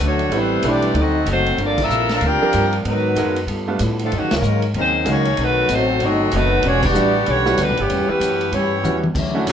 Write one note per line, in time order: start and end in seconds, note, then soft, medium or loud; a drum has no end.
0.00 0.29 D2 medium
0.00 0.21 D3 medium
0.00 0.21 F#3 medium
0.00 0.33 F#3 medium
0.00 0.22 A3 medium
0.00 0.33 A3 medium
0.00 0.22 C#4 medium
0.00 0.33 D4 medium
0.05 0.35 A3 medium
0.05 0.35 D4 medium
0.05 0.35 F#4 medium
0.05 0.34 C#5 medium
0.19 ride soft
0.30 0.62 A1 medium
0.30 0.62 G3 medium
0.30 0.64 G3 medium
0.30 0.52 A3 soft
0.30 0.63 A3 medium
0.30 0.63 B3 medium
0.30 0.63 C4 medium
0.30 0.53 C4 soft
0.30 0.64 C4 medium
0.30 0.63 E4 medium
0.30 0.53 G4 medium
0.30 0.54 B4 medium
0.30 ride medium
0.34 0.64 E3 medium
0.34 0.66 G3 medium
0.34 0.66 E4 medium
0.34 0.66 B4 medium
0.34 0.66 C5 medium
0.62 0.94 B1 medium
0.62 0.96 E3 medium
0.62 0.96 G3 medium
0.62 0.84 A3 medium
0.62 0.96 A3 medium
0.62 0.84 C4 medium
0.62 0.96 C4 medium
0.62 0.96 D4 medium
0.62 0.96 E4 medium
0.62 0.85 G4 medium
0.62 0.85 B4 medium
0.62 0.96 B4 medium
0.62 hi-hat pedal medium
0.62 ride medium
0.68 0.98 C4 medium
0.68 0.97 G4 medium
0.68 0.97 B4 medium
0.68 0.98 D5 loud
0.82 ride medium
0.94 1.25 D2 loud
0.94 1.16 D3 medium
0.94 1.16 F#3 soft
0.94 1.27 A3 medium
0.94 1.17 C4 medium
0.94 1.26 C4 medium
0.94 1.28 D#4 medium
0.94 1.17 D#4 medium
0.94 ride medium
0.99 1.29 C4 medium
0.99 1.30 F#4 medium
0.99 1.30 A4 medium
0.99 1.29 D#5 medium
1.26 1.57 F#1 medium
1.26 1.47 D3 medium
1.26 1.48 F#3 medium
1.26 1.57 F#3 medium
1.26 1.57 A3 medium
1.26 1.57 C4 medium
1.26 1.48 C4 medium
1.26 1.49 D#4 medium
1.26 hi-hat pedal medium
1.26 ride medium
1.31 1.59 A3 medium
1.31 1.58 D#4 medium
1.31 1.59 F#4 medium
1.31 1.59 C5 loud
1.46 ride soft
1.58 1.89 G1 medium
1.58 1.78 F3 medium
1.58 1.79 G3 soft
1.58 1.78 A#3 medium
1.58 1.80 A#3 medium
1.58 1.80 C4 medium
1.58 1.79 D4 medium
1.58 1.80 F4 soft
1.58 1.80 A#4 medium
1.58 ride medium
1.62 1.80 F4 medium
1.62 1.80 A4 medium
1.62 1.80 D5 loud
1.78 2.10 F3 medium
1.78 2.10 A#3 medium
1.78 2.10 E4 medium
1.78 kick medium
1.78 crash medium
1.82 2.12 D4 loud
1.82 2.12 A4 medium
1.82 2.12 A#4 medium
1.82 2.12 E5 loud
1.90 2.20 A#1 medium
1.90 2.11 G3 medium
1.90 2.12 C4 medium
1.90 2.12 F4 medium
1.90 2.12 A#4 medium
1.90 hi-hat pedal medium
2.09 2.21 A#3 medium
2.09 2.21 D4 medium
2.09 2.21 F4 medium
2.09 snare medium
2.09 ride soft
2.14 2.23 D4 medium
2.14 2.23 A4 medium
2.14 2.24 A#4 medium
2.14 2.24 F5 loud
2.21 2.39 D2 medium
2.21 2.43 G3 soft
2.21 2.73 A#3 medium
2.21 2.44 C4 medium
2.21 2.73 D4 medium
2.21 2.73 G4 medium
2.21 ride medium
2.25 2.44 F4 medium
2.25 2.75 F4 loud
2.25 2.44 A#4 medium
2.25 2.75 A#4 loud
2.25 2.75 D5 loud
2.25 2.75 G5 loud
2.42 2.83 F3 medium
2.42 2.83 A#3 medium
2.42 2.83 C4 medium
2.42 2.83 D4 medium
2.42 2.83 A#4 medium
2.53 2.84 G2 loud
2.53 2.74 G3 medium
2.53 2.75 C4 medium
2.53 2.75 F4 medium
2.53 2.75 A#4 medium
2.53 hi-hat pedal medium
2.53 ride medium
2.72 ride soft
2.85 3.15 G#2 medium
2.85 3.44 D#3 medium
2.85 3.44 F#3 medium
2.85 3.45 F#3 medium
2.85 3.06 G#3 medium
2.85 3.44 B3 medium
2.85 3.06 B3 medium
2.85 3.45 D#4 medium
2.85 3.06 F#4 medium
2.85 3.07 A#4 medium
2.85 3.46 A#4 medium
2.85 3.45 B4 loud
2.85 ride medium
3.15 3.46 F#2 medium
3.15 3.37 G#3 medium
3.15 3.34 G#3 medium
3.15 3.35 A#3 medium
3.15 3.38 B3 medium
3.15 3.35 B3 soft
3.15 3.35 D#4 medium
3.15 3.35 F#4 medium
3.15 3.38 F#4 medium
3.15 3.38 A#4 medium
3.15 hi-hat pedal medium
3.15 ride medium
3.36 ride soft
3.47 3.78 G2 medium
3.47 3.69 G3 medium
3.47 3.69 B3 medium
3.47 3.69 F4 medium
3.47 3.70 A4 medium
3.47 ride medium
3.68 3.79 G3 medium
3.68 3.79 A3 medium
3.68 3.79 B3 medium
3.68 3.79 D4 medium
3.68 3.79 F4 medium
3.79 4.11 A2 medium
3.79 4.00 G3 medium
3.79 4.01 B3 medium
3.79 4.01 F4 medium
3.79 4.01 A4 medium
3.79 hi-hat pedal medium
3.79 ride medium
3.99 4.12 D3 medium
3.99 4.12 F3 medium
3.99 4.12 A3 medium
3.99 ride medium
4.03 4.13 F3 medium
4.03 4.13 B3 medium
4.03 4.13 D4 medium
4.03 4.13 A4 medium
4.10 4.22 F#2 medium
4.10 4.32 C#3 medium
4.10 4.32 F#3 medium
4.10 4.32 A#3 medium
4.10 4.33 D#4 medium
4.10 4.33 G#4 medium
4.10 ride medium
4.14 4.32 D#3 medium
4.14 4.33 D#3 medium
4.14 4.33 A#3 medium
4.14 4.33 C#4 medium
4.14 4.33 F#4 medium
4.22 4.31 D#2 medium
4.31 4.41 C#2 medium
4.31 4.64 C#3 medium
4.31 4.64 D#3 medium
4.31 4.64 G#3 medium
4.31 4.64 A#3 medium
4.31 4.64 C#4 medium
4.31 4.64 D#4 medium
4.31 4.64 A#4 loud
4.31 snare medium
4.31 ride medium
4.41 4.73 G#2 medium
4.41 4.63 F#3 medium
4.41 4.63 A#3 medium
4.41 4.64 D#4 medium
4.41 4.64 G#4 medium
4.41 hi-hat pedal medium
4.62 ride soft
4.74 5.05 D#2 medium
4.74 5.05 C#3 medium
4.74 5.04 D#3 medium
4.74 4.95 F#3 soft
4.74 4.96 A#3 medium
4.74 5.04 C4 medium
4.74 4.96 D#4 soft
4.74 4.96 G#4 medium
4.74 ride medium
4.79 5.06 A#3 medium
4.79 5.06 D#4 medium
4.79 5.06 G#4 medium
4.79 5.06 C5 medium
5.05 5.37 C#2 medium
5.05 5.38 D#3 medium
5.05 5.27 F#3 medium
5.05 5.23 G#3 medium
5.05 5.23 A#3 medium
5.05 5.38 A#3 medium
5.05 5.28 A#3 medium
5.05 5.23 C#4 medium
5.05 5.38 C#4 medium
5.05 5.23 D#4 medium
5.05 5.28 D#4 medium
5.05 5.23 F#4 medium
5.05 5.28 G#4 medium
5.05 hi-hat pedal medium
5.05 ride medium
5.11 5.40 A#3 medium
5.11 5.40 D#4 medium
5.11 5.40 G#4 medium
5.11 5.40 C#5 loud
5.25 ride medium
5.37 5.68 B1 medium
5.37 5.58 B2 soft
5.37 5.70 D#3 medium
5.37 5.69 F#3 medium
5.37 5.59 A3 soft
5.37 5.70 B3 medium
5.37 5.59 C4 soft
5.37 5.60 D#4 medium
5.37 ride medium
5.42 5.71 A3 medium
5.42 5.72 D#4 medium
5.42 5.71 F#4 medium
5.42 5.71 B4 loud
5.69 6.00 A1 medium
5.69 5.90 B2 medium
5.69 6.01 F#3 medium
5.69 5.90 A3 medium
5.69 6.01 A3 medium
5.69 5.90 C4 medium
5.69 6.01 C4 medium
5.69 5.91 D#4 medium
5.69 hi-hat pedal medium
5.69 ride medium
5.73 6.03 A3 medium
5.73 6.03 D#4 medium
5.73 6.02 F#4 medium
5.73 6.03 C5 loud
6.00 6.31 G1 medium
6.00 6.21 B2 medium
6.00 6.32 F#3 medium
6.00 6.22 A3 soft
6.00 6.33 A3 medium
6.00 6.22 C4 medium
6.00 6.34 C4 loud
6.00 6.33 D#4 medium
6.00 6.23 D#4 medium
6.00 6.33 F#4 loud
6.00 6.34 A4 loud
6.00 6.33 D#5 loud
6.00 ride medium
6.31 6.63 F#1 medium
6.31 6.53 B2 medium
6.31 6.64 D#3 medium
6.31 6.64 F#3 medium
6.31 6.50 A3 medium
6.31 6.54 A3 medium
6.31 6.50 B3 medium
6.31 6.64 B3 medium
6.31 6.50 C4 medium
6.31 6.54 C4 medium
6.31 6.50 D#4 medium
6.31 6.54 D#4 medium
6.31 6.50 F#4 medium
6.31 6.64 F#4 medium
6.31 6.65 B4 loud
6.31 hi-hat pedal medium
6.31 ride medium
6.36 6.65 A3 medium
6.36 6.65 D#4 medium
6.63 6.94 E1 medium
6.63 6.85 E3 medium
6.63 6.85 G3 medium
6.63 6.84 A3 medium
6.63 6.84 C#4 medium
6.63 6.84 D4 medium
6.63 6.85 D4 medium
6.63 6.83 F#4 medium
6.63 6.84 C#5 loud
6.63 ride medium
6.67 6.86 F#4 medium
6.83 7.26 G3 medium
6.83 7.27 B3 medium
6.83 7.27 B3 loud
6.83 7.27 D4 medium
6.83 7.26 F#4 medium
6.83 7.27 G4 medium
6.83 7.27 D5 loud
6.83 kick medium
6.83 crash medium
6.95 7.26 A1 medium
6.95 7.16 E3 medium
6.95 7.12 G3 medium
6.95 7.16 G3 medium
6.95 7.12 B3 medium
6.95 7.13 D4 medium
6.95 7.17 D4 medium
6.95 7.13 E4 medium
6.95 7.13 F#4 medium
6.95 7.17 F#4 medium
6.95 hi-hat pedal medium
7.26 7.58 B1 medium
7.26 7.58 D3 medium
7.26 7.47 E3 medium
7.26 7.48 G3 medium
7.26 7.58 G3 medium
7.26 7.59 B3 medium
7.26 7.59 C#4 medium
7.26 7.48 D4 medium
7.26 7.59 F#4 medium
7.26 7.49 F#4 medium
7.26 7.59 G4 medium
7.26 7.59 C#5 loud
7.26 ride medium
7.45 7.57 G3 medium
7.45 7.57 B3 medium
7.45 7.57 D4 medium
7.45 7.57 E4 medium
7.45 7.57 F#4 medium
7.45 snare soft
7.58 7.70 D2 loud
7.58 7.78 D3 medium
7.58 7.80 E3 medium
7.58 7.77 G3 medium
7.58 7.80 G3 medium
7.58 7.79 G3 medium
7.58 7.78 B3 medium
7.58 7.80 D4 medium
7.58 7.79 D4 medium
7.58 7.80 F#4 medium
7.58 7.79 F#4 medium
7.58 7.79 B4 loud
7.58 hi-hat pedal medium
7.58 ride medium
7.70 7.79 B1 medium
7.77 7.89 G1 medium
7.77 8.10 C#3 medium
7.77 8.09 E3 medium
7.77 8.08 E3 medium
7.77 8.09 G3 medium
7.77 8.09 B3 medium
7.77 8.07 C#4 medium
7.77 8.07 G4 medium
7.77 ride medium
7.89 8.08 E2 medium
7.89 8.11 A2 medium
7.89 8.11 G3 medium
7.89 8.11 C#4 medium
7.89 8.12 F#4 medium
7.89 ride medium
8.07 8.52 E3 medium
8.07 8.53 B3 medium
8.07 8.52 C#4 medium
8.07 8.51 E4 medium
8.07 8.51 G4 medium
8.07 8.53 G4 medium
8.07 8.52 B4 loud
8.07 muted upright bass stroke soft
8.20 8.51 F#2 medium
8.20 8.42 A2 medium
8.20 8.42 G3 medium
8.20 8.43 C#4 medium
8.20 8.43 F#4 medium
8.20 hi-hat pedal medium
8.20 ride medium
8.41 ride soft
8.51 8.83 G2 medium
8.51 8.73 A2 soft
8.51 9.04 E3 medium
8.51 8.74 G3 medium
8.51 9.04 G3 medium
8.51 9.03 B3 medium
8.51 9.04 C#4 medium
8.51 8.74 C#4 medium
8.51 9.04 E4 medium
8.51 8.75 F#4 medium
8.51 9.03 G4 medium
8.51 9.03 C#5 medium
8.51 ride medium
8.84 9.14 E2 medium
8.84 9.05 A2 medium
8.84 9.02 G3 medium
8.84 9.05 G3 medium
8.84 9.01 B3 medium
8.84 9.02 C#4 medium
8.84 9.06 C#4 medium
8.84 9.01 E4 medium
8.84 9.02 F#4 medium
8.84 9.06 F#4 medium
8.84 hi-hat pedal medium
8.84 high tom medium
9.04 high tom medium
9.14 9.46 D2 medium
9.14 9.36 D3 medium
9.14 9.36 F#3 medium
9.14 9.52 F#3 medium
9.14 9.37 C#4 medium
9.14 9.52 D4 medium
9.14 9.37 E4 medium
9.14 9.52 E4 medium
9.14 9.52 C#5 medium
9.14 kick medium
9.14 crash medium
9.34 9.46 A3 medium
9.34 9.46 C#4 medium
9.34 9.46 D4 medium
9.34 9.46 E4 medium
9.34 9.46 F#4 medium
9.45 9.52 C#2 medium
9.45 9.52 D3 medium
9.45 9.52 F#3 medium
9.45 9.52 C#4 medium
9.45 9.52 E4 medium
9.45 hi-hat pedal medium
9.45 ride medium